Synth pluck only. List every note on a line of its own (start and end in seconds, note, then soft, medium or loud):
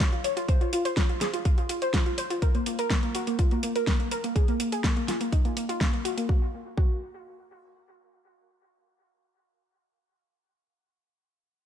0.00 0.09 F4 medium
0.13 0.21 F4 medium
0.24 0.34 C#5 medium
0.37 0.46 F4 medium
0.48 0.58 C5 loud
0.61 0.70 F4 medium
0.73 0.82 F4 medium
0.85 0.94 C5 medium
0.97 1.06 F4 medium
1.09 1.18 F4 medium
1.21 1.30 G#4 medium
1.34 1.42 F4 medium
1.45 1.55 F4 medium
1.58 1.67 F4 medium
1.69 1.79 F4 medium
1.82 1.91 C5 medium
1.94 2.03 F4 medium
2.06 2.15 F4 medium
2.18 2.27 C5 medium
2.30 2.39 F4 medium
2.42 2.52 A#4 loud
2.55 2.63 A#3 medium
2.66 2.76 A#3 medium
2.79 2.88 A#4 medium
2.91 3.00 A#3 medium
3.03 3.12 A#3 medium
3.15 3.24 F#4 medium
3.27 3.36 A#3 medium
3.39 3.48 F4 medium
3.51 3.60 A#3 medium
3.63 3.72 A#3 medium
3.76 3.84 A#4 medium
3.87 3.97 A#3 medium
4.00 4.09 A#3 medium
4.12 4.21 A#4 medium
4.24 4.33 A#3 medium
4.36 4.45 G#4 medium
4.48 4.57 A#3 medium
4.60 4.69 A#3 medium
4.72 4.81 G#4 medium
4.84 4.93 A#3 medium
4.97 5.05 A#3 medium
5.08 5.18 F4 medium
5.21 5.29 A#3 medium
5.32 5.42 D#4 medium
5.45 5.54 A#3 medium
5.57 5.66 A#3 medium
5.69 5.78 F4 medium
5.81 5.90 A#3 medium
5.93 6.02 A#3 medium
6.05 6.14 F#4 medium
6.17 6.26 A#3 medium
6.29 6.43 F#4 medium
6.78 10.82 F#4 medium